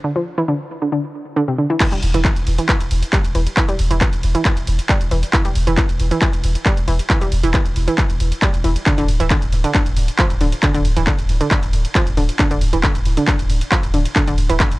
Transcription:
0.04 D3
0.16 F3
0.38 E3
0.48 D3
0.82 D3
0.92 D3
1.36 D3
1.48 C3
1.58 D3
1.70 E3
1.80 E3, kick, clap, closed hi-hat, crash, ride
1.92 E1 G3, closed hi-hat, ride
2.03 E1, open hi-hat, ride
2.14 E1 E3, closed hi-hat, ride
2.25 E3, kick, clap, closed hi-hat
2.36 E1, closed hi-hat, ride
2.47 E1, open hi-hat, ride
2.58 E3, closed hi-hat, ride
2.69 E3, kick, clap, closed hi-hat, ride
2.80 E1, closed hi-hat, ride
2.91 E1, open hi-hat, ride
3.03 closed hi-hat, ride
3.13 G3, kick, clap, closed hi-hat, ride
3.25 E1, closed hi-hat, ride
3.35 E1 E3, open hi-hat, ride
3.47 closed hi-hat, ride
3.57 E3, kick, clap, closed hi-hat, ride
3.69 E1 G3, closed hi-hat, ride
3.79 E1, open hi-hat, ride
3.91 E1 E3, closed hi-hat, ride
4.01 E3, kick, clap, closed hi-hat, ride
4.13 E1, closed hi-hat, ride
4.23 E1, open hi-hat, ride
4.35 E3, closed hi-hat, ride
4.45 E3, kick, clap, closed hi-hat, ride
4.57 E1, closed hi-hat, ride
4.67 E1, open hi-hat, ride
4.79 closed hi-hat, ride
4.89 G3, kick, clap, closed hi-hat, ride
5.01 E1, closed hi-hat, ride
5.11 E1 E3, open hi-hat, ride
5.23 closed hi-hat, ride
5.33 E3, kick, clap, closed hi-hat, ride
5.45 E1 G3, closed hi-hat, ride
5.55 E1, open hi-hat, ride
5.67 E1 E3, closed hi-hat, ride
5.77 E3, kick, clap, closed hi-hat, ride
5.89 E1, closed hi-hat, ride
6.00 E1, open hi-hat, ride
6.11 E3, closed hi-hat, ride
6.22 E3, kick, clap, closed hi-hat, ride
6.33 E1, closed hi-hat, ride
6.44 E1, open hi-hat, ride
6.55 closed hi-hat, ride
6.66 G3, kick, clap, closed hi-hat, ride
6.77 E1, closed hi-hat, ride
6.88 E1 E3, open hi-hat, ride
6.99 closed hi-hat, ride
7.10 E3, kick, clap, closed hi-hat, ride
7.21 E1 G3, closed hi-hat, ride
7.32 E1, open hi-hat, ride
7.43 E1 E3, closed hi-hat, ride
7.54 E3, kick, clap, closed hi-hat, ride
7.66 E1, closed hi-hat, ride
7.76 E1, open hi-hat, ride
7.88 E3, closed hi-hat, ride
7.98 E3, kick, clap, closed hi-hat, ride
8.10 E1, closed hi-hat, ride
8.20 E1, open hi-hat, ride
8.32 closed hi-hat, ride
8.42 G3, kick, clap, closed hi-hat, ride
8.54 E1, closed hi-hat, ride
8.64 E1 E3, open hi-hat, ride
8.76 closed hi-hat, ride
8.86 D3, kick, clap, closed hi-hat, ride
8.98 D1 D3, closed hi-hat, ride
9.08 D1, open hi-hat, ride
9.20 D1 E3, closed hi-hat, ride
9.30 D3, kick, clap, closed hi-hat, ride
9.42 D1, closed hi-hat, ride
9.52 D1, open hi-hat, ride
9.64 D3, closed hi-hat, ride
9.75 D3, kick, clap, closed hi-hat, ride
9.86 D1, closed hi-hat, ride
9.97 D1, open hi-hat, ride
10.08 closed hi-hat, ride
10.19 F3, kick, clap, closed hi-hat, ride
10.30 D1, closed hi-hat, ride
10.41 D1 D3, open hi-hat, ride
10.52 closed hi-hat, ride
10.63 D3, kick, clap, closed hi-hat, ride
10.74 D1 D3, closed hi-hat, ride
10.85 D1, open hi-hat, ride
10.96 D1 E3, closed hi-hat, ride
11.07 D3, kick, clap, closed hi-hat, ride
11.19 D1, closed hi-hat, ride
11.29 D1, open hi-hat, ride
11.41 D3, closed hi-hat, ride
11.51 D3, kick, clap, closed hi-hat, ride
11.63 D1, closed hi-hat, ride
11.73 D1, open hi-hat, ride
11.85 closed hi-hat, ride
11.95 F3, kick, clap, closed hi-hat, ride
12.07 D1, closed hi-hat, ride
12.17 D1 D3, open hi-hat, ride
12.29 closed hi-hat, ride
12.39 D3, kick, clap, closed hi-hat, ride
12.51 D1 D3, closed hi-hat, ride
12.61 D1, open hi-hat, ride
12.73 D1 E3, closed hi-hat, ride
12.83 D3, kick, clap, closed hi-hat, ride
12.95 D1, closed hi-hat, ride
13.05 D1, open hi-hat, ride
13.17 D3, closed hi-hat, ride
13.28 D3, kick, clap, closed hi-hat, ride
13.39 D1, closed hi-hat, ride
13.50 D1, open hi-hat, ride
13.61 closed hi-hat, ride
13.72 F3, kick, clap, closed hi-hat, ride
13.83 D1, closed hi-hat, ride
13.94 D1 D3, open hi-hat, ride
14.05 closed hi-hat, ride
14.16 D3, kick, clap, closed hi-hat, ride
14.27 D1 D3, closed hi-hat, ride
14.38 D1, open hi-hat, ride
14.49 D1 E3, closed hi-hat, ride
14.60 D3, kick, clap, closed hi-hat, ride
14.71 D1, closed hi-hat, ride

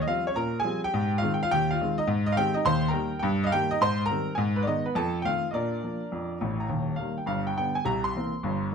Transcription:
0.02 D#5
0.07 F3 G3 C4 F4 F5
0.27 C#4 C#5
0.35 A#2 A#4 A#5
0.60 G#4 G#5
0.64 F3 G3 C4
0.84 G4 G5
0.94 G#2
1.18 G#3 F4 F5
1.23 D#3 C4
1.34 G5
1.43 F4 F5
1.51 D#2 G4 G5
1.71 F4 F5
1.81 D#3 G#3 C4
1.98 D#4 D#5
2.07 G#2
2.26 D#5
2.32 G#3 F5
2.36 D#3 C4 G4 G5
2.54 D#4 D#5
2.65 D#2 C5 C6
2.88 A#4 G5 A#5
2.93 D#3 G3 A#3
3.19 G2 G5
3.44 D#5 F5
3.52 D#3 G3 A#3 G4 G5
3.71 D#4 D#5
3.81 G#2 C5 C6
4.06 A#4 A#5
4.10 D#3 G3 C4
4.35 G#2 G#5
4.56 B4
4.62 D#3 G#3 D5
4.67 B3 D#4 D#5
4.86 B3 B4
4.95 F2 A4 A5
5.22 D#3 A3 C4 F5 G5
5.27 F4
5.51 A#2 A#4 D5 D#5
5.55 D4
5.84 F3 A#3
6.12 F2
6.41 A1 A2
6.60 A#5
6.69 D#1 D#2
6.96 D#3 G3 A#3 F5
7.18 G5
7.26 G1 G2 F5
7.47 G5
7.57 D3 G3 B3 G5
7.75 G#5
7.85 C2 C3 A#5
8.04 C6
8.16 E3 A#3 C4
8.43 G1 G2

